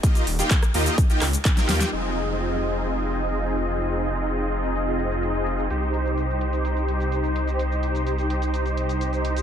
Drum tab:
HH |xxoxxxoxxxoxxxox|x-x-x-----x---xx|x-xxx-xxxxxxxxxx|x-xxx-xxxxxxxxxx|
SH |xx-xxx-xxx-xxx-x|xx-xxx-xxx-xxx-x|xx-xxx-xxx-xxx-x|xx-xxx-xxx-xxx-x|
CP |----x-----x-x---|----------------|----------------|----------------|
SD |-----r----r--ooo|----------------|----------------|----------------|
BD |o---o---o---o---|----------------|----------------|----------------|

HH |x-xxxxxxxxxxxxxx|
SH |xx-xxx-xxx-xxx-x|
CP |----------------|
SD |----------------|
BD |----------------|